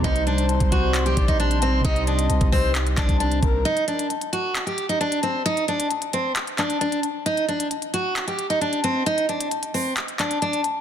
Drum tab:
HH |xxxxxxx-xxxxxxx-|xxxxxxo-xxxxxxx-|xxxxxxx-xxxxxxx-|xxxxxxx-xxxxxxx-|
CP |--------x-------|--------x-x-----|--------x-------|--------x-x-----|
BD |o----oo---oo----|o----oo---oo--o-|----------------|----------------|

HH |xxxxxxx-xxxxxxx-|xxxxxxo-xxxxxxx-|
CP |--------x-------|--------x-x-----|
BD |----------------|----------------|